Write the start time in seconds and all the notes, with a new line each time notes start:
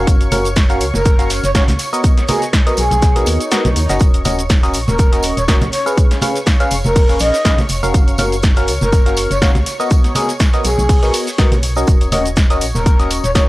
Already playing: C#4 F#4 A#4 C#5 F5 C#6
0.07 F#1, kick, closed hi-hat, tambourine, shaker
0.20 closed hi-hat, tambourine, shaker
0.32 C#4 F#4 A#4 F5, open hi-hat, tambourine, high conga, shaker
0.45 closed hi-hat, tambourine, shaker
0.56 kick, snare, closed hi-hat, tambourine, shaker
0.69 C#4 F#4 A#4 F5, snare, closed hi-hat, tambourine, shaker
0.81 C#2, open hi-hat, tambourine, shaker
0.94 F#1 A#4, snare, tambourine, high conga, shaker
1.05 kick, closed hi-hat, tambourine, shaker
1.18 C#4 F#4 A#4 F5, snare, closed hi-hat, tambourine, shaker
1.30 snare, open hi-hat, tambourine, shaker
1.43 F#1 C#5, snare, closed hi-hat, tambourine, shaker
1.55 C#4 F#4 A#4 C#5 F5, kick, snare, closed hi-hat, tambourine, shaker
1.68 C#2, snare, closed hi-hat, tambourine, high conga, shaker
1.79 snare, open hi-hat, tambourine
1.93 B3 F#4 A#4 D#5, tambourine, shaker
2.04 kick, closed hi-hat, tambourine, shaker
2.17 snare, closed hi-hat, tambourine, shaker
2.28 B3 F#4 G#4 A#4 D#5, open hi-hat, tambourine, high conga, shaker
2.42 snare, closed hi-hat, tambourine, shaker
2.53 kick, snare, closed hi-hat, tambourine, shaker
2.66 B3 F#4 A#4 D#5, snare, closed hi-hat, tambourine, shaker
2.77 B1 G#4, open hi-hat, tambourine, shaker
2.91 B1, closed hi-hat, tambourine, high conga, shaker
3.02 kick, snare, closed hi-hat, tambourine, swell, shaker
3.16 B3 F#4 A#4 D#5, snare, closed hi-hat, tambourine, shaker
3.26 D#2, open hi-hat, tambourine, shaker
3.40 closed hi-hat, tambourine, shaker
3.51 B3 F#4 A#4 D#5, snare, closed hi-hat, tambourine, shaker
3.65 B1, snare, closed hi-hat, tambourine, high conga, shaker
3.76 D#2, open hi-hat, tambourine, shaker
3.89 F#1 C#4 F#4 A#4 D#5, snare, closed hi-hat, tambourine, shaker
4.00 C#5 C#6, kick, closed hi-hat, tambourine, shaker
4.14 closed hi-hat, tambourine, shaker
4.25 C#4 F#4 A#4 D#5, open hi-hat, tambourine, high conga, shaker
4.39 closed hi-hat, tambourine, shaker
4.50 kick, snare, closed hi-hat, tambourine, shaker
4.63 C#4 F#4 A#4 D#5, snare, closed hi-hat, tambourine, shaker
4.74 A#1, open hi-hat, tambourine, shaker
4.88 D#1 A#4, snare, tambourine, high conga, shaker
4.99 kick, closed hi-hat, tambourine, shaker
5.12 C#4 F#4 A#4 D#5, snare, closed hi-hat, tambourine, shaker
5.23 open hi-hat, tambourine, shaker
5.37 D#1 C#5, closed hi-hat, tambourine, shaker
5.48 C#4 F#4 A#4 C#5 D#5, kick, snare, closed hi-hat, tambourine, shaker
5.61 A#1, snare, closed hi-hat, tambourine, high conga, shaker
5.73 C#5, snare, open hi-hat, tambourine, shaker
5.86 C#4 G#4 B4 F5, tambourine, shaker
5.97 kick, closed hi-hat, tambourine, shaker
6.11 snare, closed hi-hat, tambourine, shaker
6.22 C#4 G#4 B4 F5, open hi-hat, tambourine, high conga, shaker
6.36 snare, closed hi-hat, tambourine, shaker
6.46 kick, snare, closed hi-hat, tambourine, shaker
6.60 C#4 G#4 B4 F5, snare, closed hi-hat, tambourine, shaker
6.71 F1, open hi-hat, tambourine, shaker
6.84 F1 A#4, tambourine, high conga, shaker
6.96 kick, closed hi-hat, open hi-hat, tambourine, shaker
7.09 C#4 G#4 B4 F5, snare, closed hi-hat, tambourine, shaker
7.19 A#1 D#5, open hi-hat, tambourine, shaker
7.34 snare, closed hi-hat, tambourine, shaker
7.45 C#2 C#4 G#4 B4 F5, kick, snare, closed hi-hat, tambourine, shaker
7.58 snare, closed hi-hat, tambourine, high conga, shaker
7.69 F1, open hi-hat, tambourine, shaker
7.83 F1 C#4 F#4 A#4 F5, tambourine, shaker
7.94 F#1, kick, closed hi-hat, tambourine, shaker
8.08 closed hi-hat, tambourine, shaker
8.18 C#4 F#4 A#4 F5, open hi-hat, tambourine, high conga, shaker
8.32 closed hi-hat, tambourine, shaker
8.43 kick, snare, closed hi-hat, tambourine, shaker
8.56 C#4 F#4 A#4 F5, snare, closed hi-hat, tambourine, shaker
8.67 C#2, open hi-hat, tambourine, shaker
8.81 F#1 A#4, snare, tambourine, high conga, shaker
8.92 kick, closed hi-hat, tambourine, shaker
9.06 C#4 F#4 A#4 F5, snare, closed hi-hat, tambourine, shaker
9.17 open hi-hat, tambourine, shaker
9.30 F#1 C#5, closed hi-hat, tambourine, shaker
9.42 C#4 F#4 A#4 C#5 F5, kick, snare, closed hi-hat, tambourine, shaker
9.55 C#2, snare, closed hi-hat, tambourine, high conga, shaker
9.66 snare, open hi-hat, tambourine, shaker
9.80 B3 F#4 A#4 D#5, tambourine, shaker
9.90 kick, closed hi-hat, tambourine, shaker
10.04 snare, closed hi-hat, tambourine, shaker
10.15 B3 F#4 G#4 A#4 D#5, open hi-hat, tambourine, high conga, shaker
10.29 snare, closed hi-hat, tambourine, shaker
10.40 kick, snare, closed hi-hat, tambourine, shaker
10.53 B3 F#4 A#4 D#5, snare, closed hi-hat, tambourine, shaker
10.64 B1 G#4, open hi-hat, tambourine, shaker
10.78 B1, tambourine, high conga, shaker
10.89 kick, closed hi-hat, open hi-hat, tambourine, shaker
11.03 B3 F#4 A#4 D#5, snare, closed hi-hat, tambourine, shaker
11.14 open hi-hat, tambourine, shaker
11.27 snare, closed hi-hat, tambourine, shaker
11.38 B1 B3 F#4 A#4 D#5, kick, snare, closed hi-hat, tambourine, shaker
11.52 snare, closed hi-hat, tambourine, high conga, shaker
11.63 open hi-hat, tambourine, shaker
11.76 C#4 F#4 A#4 D#5, tambourine, shaker
11.87 D#1, kick, closed hi-hat, tambourine, shaker
12.01 closed hi-hat, tambourine, shaker
12.12 C#4 F#4 A#4 D#5, open hi-hat, tambourine, high conga, shaker
12.25 closed hi-hat, tambourine, shaker
12.37 kick, snare, closed hi-hat, tambourine, shaker
12.50 C#4 F#4 A#4 D#5, snare, closed hi-hat, tambourine, shaker
12.61 A#1, open hi-hat, tambourine, shaker
12.75 D#1 A#4, snare, tambourine, high conga, shaker
12.86 kick, closed hi-hat, tambourine, shaker
12.99 C#4 F#4 A#4 D#5, snare, closed hi-hat, tambourine, shaker
13.11 open hi-hat, tambourine, shaker
13.24 D#1 C#5, closed hi-hat, tambourine, shaker
13.35 C#4 F#4 A#4 C#5 D#5, kick, snare, closed hi-hat, tambourine, shaker